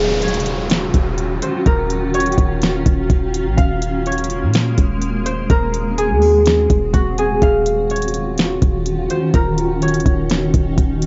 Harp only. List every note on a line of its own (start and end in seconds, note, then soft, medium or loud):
0.00 1.78 G#4 medium
0.00 1.41 F5 loud
0.23 1.48 C#5 medium
1.42 2.20 C5 medium
1.66 3.78 A#4 medium
2.14 4.06 C#5 loud
3.57 5.24 F5 loud
4.07 5.32 C#5 medium
5.26 7.24 C5 medium
5.50 7.62 A#4 loud
5.98 7.18 G#4 medium
6.93 7.48 F#4 medium
7.18 9.46 G#4 medium
7.42 9.09 F5 loud
7.91 9.16 C#5 medium
9.10 9.88 C5 medium
9.34 11.06 A#4 medium
9.82 11.06 C#5 loud